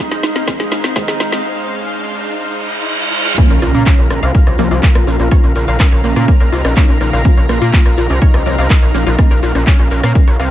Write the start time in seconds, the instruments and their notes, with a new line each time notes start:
Already playing: analog synth pad G#2 G#3 D#4 C5 F5, riser
0.00 synth stab D#3 G#3 C4, analog polysynth D#4
0.11 synth arpeggio sound G#4, snare, closed hi-hat
0.23 synth arpeggio sound D#4, snare, open hi-hat, shaker
0.35 synth arpeggio sound C4, snare, closed hi-hat, shaker
0.48 synth stab D#3 G#3 C4, synth arpeggio sound G#3, analog polysynth D#4, kick, snare, closed hi-hat, shaker
0.60 synth arpeggio sound G#4, snare, closed hi-hat
0.71 synth arpeggio sound D#4, snare, open hi-hat, shaker
0.84 synth arpeggio sound C4, snare, closed hi-hat, shaker
0.96 synth stab D#3 G#3 C4, synth arpeggio sound G#3, analog polysynth D#4, kick, snare, closed hi-hat, shaker
1.08 synth arpeggio sound G#4, snare, closed hi-hat
1.20 synth arpeggio sound D#4, snare, open hi-hat, shaker
1.32 synth arpeggio sound C4, snare, closed hi-hat, shaker
2.41 reverse cymbal
3.37 analog synth pad C#3 A#4 F5 A#5, synth stab F3 A#3 C#4, synth arpeggio sound A#3, analog polysynth C#4, kick, closed hi-hat, impact, shaker
3.50 analog synth bass A#1, synth arpeggio sound A#4, closed hi-hat
3.62 analog synth bass A#1, synth arpeggio sound F4, cross-stick, open hi-hat, shaker
3.74 analog synth bass A#2, synth arpeggio sound C#4, closed hi-hat, shaker
3.86 synth arpeggio sound C#5, kick, clap, closed hi-hat, shaker
3.99 analog synth bass A#1, synth arpeggio sound C#4, closed hi-hat
4.10 analog synth bass A#1, synth arpeggio sound A#4, cross-stick, open hi-hat, shaker
4.23 analog synth bass C2, synth arpeggio sound F5, closed hi-hat, shaker
4.35 analog polysynth F4, synth arpeggio sound A#4, kick, closed hi-hat, shaker
4.47 analog synth bass C2, synth arpeggio sound C#5, cross-stick, closed hi-hat
4.58 analog synth bass C2, synth stab F3 A#3 C#4, synth arpeggio sound A#3, open hi-hat, shaker
4.71 analog synth bass C2, synth arpeggio sound F4, closed hi-hat, shaker
4.83 synth arpeggio sound A#3, kick, clap, closed hi-hat, shaker
4.95 analog synth bass A#1, synth arpeggio sound A#4, cross-stick, closed hi-hat
5.07 analog synth bass A#1, synth stab F3 A#3 C#4, synth arpeggio sound F4, open hi-hat, shaker
5.13 closed hi-hat
5.19 analog synth bass A#1, synth arpeggio sound C#4, closed hi-hat, shaker
5.31 synth stab F3 A#3 C#4, synth arpeggio sound C#5, kick, cross-stick, closed hi-hat, shaker
5.44 analog synth bass A#1, synth arpeggio sound C#4, closed hi-hat
5.55 analog synth bass A#1, synth arpeggio sound A#4, open hi-hat, shaker
5.68 analog synth bass A#1, synth arpeggio sound F5, closed hi-hat, shaker
5.80 analog polysynth C#4, synth arpeggio sound A#4, kick, cross-stick, clap, closed hi-hat, shaker
5.92 analog synth bass A#1, synth arpeggio sound C#5, closed hi-hat
6.04 analog synth bass A#1, synth arpeggio sound A#3, open hi-hat, shaker
6.16 analog synth bass A#2, synth arpeggio sound F4, cross-stick, closed hi-hat, shaker
6.28 synth arpeggio sound A#3, kick, closed hi-hat, shaker
6.40 analog synth bass A#1, synth arpeggio sound A#4, closed hi-hat
6.52 analog synth bass C2, analog polysynth D#4, synth arpeggio sound F4, open hi-hat, shaker
6.64 analog synth bass A#1, synth arpeggio sound C#4, cross-stick, closed hi-hat, shaker
6.77 synth stab F3 A#3 C#4, synth arpeggio sound C#5, kick, clap, closed hi-hat, shaker
6.89 analog synth bass A#1, synth arpeggio sound C#4, closed hi-hat
7.01 analog synth bass A#1, synth arpeggio sound A#4, cross-stick, open hi-hat, shaker
7.07 closed hi-hat
7.13 analog synth bass A#1, synth arpeggio sound F5, closed hi-hat, shaker
7.25 synth stab F3 A#3 C#4, analog polysynth F4, synth arpeggio sound A#4, kick, closed hi-hat, shaker
7.37 analog synth bass A#1, synth arpeggio sound C#5, closed hi-hat
7.49 analog synth bass A#1, synth arpeggio sound A#3, cross-stick, open hi-hat, shaker
7.61 analog synth bass A#2, synth arpeggio sound F4, closed hi-hat, shaker
7.73 synth arpeggio sound A#3, kick, clap, closed hi-hat, shaker
7.86 analog synth bass A#1, synth arpeggio sound A#4, cross-stick, closed hi-hat
7.97 analog synth bass A#1, synth arpeggio sound F4, open hi-hat, shaker
8.10 analog synth bass C2, synth arpeggio sound C#4, closed hi-hat, shaker
8.22 analog polysynth D#4, synth arpeggio sound C#5, kick, closed hi-hat, shaker
8.34 analog synth bass C2, synth arpeggio sound C#4, cross-stick, closed hi-hat
8.46 analog synth bass C2, synth stab F3 A#3 C#4, synth arpeggio sound A#4, open hi-hat, shaker
8.58 analog synth bass C2, synth arpeggio sound F5, closed hi-hat, shaker
8.70 synth arpeggio sound A#4, kick, cross-stick, clap, closed hi-hat, shaker
8.82 analog synth bass A#1, synth arpeggio sound C#5, closed hi-hat
8.94 analog synth bass A#1, synth stab F3 A#3 C#4, synth arpeggio sound A#3, open hi-hat, shaker
9.01 closed hi-hat
9.07 analog synth bass A#1, synth arpeggio sound F4, closed hi-hat, shaker
9.19 synth stab F3 A#3 C#4, synth arpeggio sound A#3, kick, cross-stick, closed hi-hat, shaker
9.30 analog synth bass A#1, synth arpeggio sound A#4, closed hi-hat, shaker
9.43 analog synth bass A#1, synth arpeggio sound F4, open hi-hat, shaker
9.54 analog synth bass A#1, synth arpeggio sound C#4, cross-stick, closed hi-hat, shaker
9.67 analog polysynth C#4, synth arpeggio sound C#5, kick, clap, closed hi-hat, shaker
9.79 analog synth bass A#1, synth arpeggio sound C#4, closed hi-hat
9.90 analog synth bass A#1, synth arpeggio sound A#4, open hi-hat, shaker
10.03 analog synth bass A#2, synth arpeggio sound F5, cross-stick, closed hi-hat, shaker
10.15 synth arpeggio sound A#4, kick, closed hi-hat, shaker
10.27 analog synth bass A#1, synth arpeggio sound C#5, closed hi-hat, shaker
10.39 analog synth bass C2, analog polysynth C4, synth arpeggio sound F5, cross-stick, open hi-hat, shaker